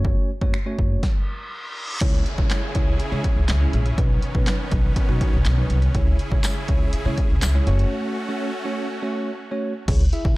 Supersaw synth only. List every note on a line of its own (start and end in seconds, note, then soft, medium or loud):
2.01 3.96 C#3 medium
2.01 7.63 C#4 medium
2.01 3.96 E4 medium
2.01 3.96 G#4 medium
3.98 5.93 D#3 medium
3.98 5.93 B3 medium
5.95 7.65 C#3 medium
5.95 7.65 E4 medium
5.95 7.65 G#4 medium
7.67 9.86 A3 medium
7.67 9.86 C#4 medium
7.67 9.86 F#4 medium